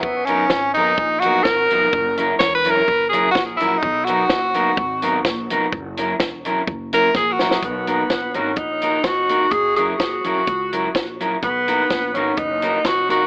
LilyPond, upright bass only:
\new Staff \with { instrumentName = "Upright bass" } { \clef bass \time 4/4 \key b \major \tempo 4 = 126 b,,4 gis,,4 ais,,4 gis,,8 eis,,8 | fis,,4 e,,4 fis,,4 ais,,8 ais,,8 | b,,4 fis,,4 gis,,4 ais,,8 eis,,8 | fis,,4 e,,4 fis,,4 ais,,8 ais,,8 |
b,,4 ais,,8 gis,,8 ais,,4 eis,,4 | fis,,4 ais,,8 b,,8 cis,4 ais,,4 | b,,4 ais,,8 gis,,8 fis,,4 eis,,4 | }